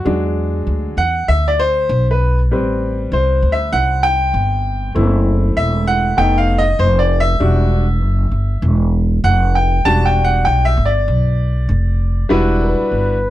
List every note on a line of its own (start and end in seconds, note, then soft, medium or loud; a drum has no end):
0.00 0.22 F#4 medium
0.05 0.64 E2 medium
0.05 0.93 F#3 soft
0.05 0.93 G#3 soft
0.05 0.94 D4 medium
0.67 0.96 D2 medium
0.97 1.26 E2 medium
0.97 1.26 F#5 medium
1.28 1.86 D2 medium
1.28 1.46 E5 loud
1.48 1.60 D5 medium
1.59 2.05 C5 medium
1.89 2.50 B1 loud
2.11 2.38 B4 medium
2.50 3.09 A1 medium
2.50 4.92 G3 medium
2.50 4.93 C4 medium
2.50 4.92 B4 soft
3.12 3.41 C2 medium
3.12 3.55 C5 medium
3.42 3.72 D2 medium
3.52 3.74 E5 medium
3.73 4.31 C2 medium
3.73 4.04 F#5 loud
4.03 4.91 G5 loud
4.34 4.92 G1 medium
4.95 5.54 F#1 medium
4.95 6.14 A3 medium
4.95 6.14 C4 soft
4.95 6.14 E4 medium
5.57 6.15 E1 medium
5.57 5.88 E5 medium
5.87 6.19 F#5 medium
6.17 6.76 F1 medium
6.17 6.61 A3 medium
6.17 6.61 B3 medium
6.17 6.62 D#4 medium
6.17 6.37 G5 loud
6.38 6.59 F5 medium
6.58 6.80 D#5 loud
6.79 7.37 F1 loud
6.79 6.98 C5 medium
6.99 7.20 D5 medium
7.20 8.69 E5 loud
7.40 8.01 E1 medium
7.40 7.84 G3 medium
7.40 7.84 D4 soft
7.40 7.85 F#4 medium
8.01 8.31 F#1 medium
8.32 8.61 G1 medium
8.62 9.21 E1 loud
9.24 9.82 F1 loud
9.24 9.56 F#5 loud
9.55 9.87 G5 medium
9.85 10.43 E1 medium
9.85 10.73 G3 medium
9.85 10.74 D4 medium
9.85 10.74 F#4 medium
9.85 10.06 A5 loud
10.06 10.27 G5 loud
10.24 10.46 F#5 medium
10.45 10.76 B1 medium
10.45 10.65 G5 loud
10.65 10.87 E5 loud
10.77 11.06 G1 medium
10.85 12.25 D5 medium
11.08 11.70 B1 loud
11.69 12.27 F1 loud
12.29 12.78 E1 medium
12.29 13.15 G3 medium
12.29 13.15 D4 medium
12.29 13.16 E4 medium
12.29 13.16 F#4 medium
12.29 13.16 B4 medium
12.62 13.30 B4 medium
12.80 muted upright bass stroke soft
12.91 13.30 G1 medium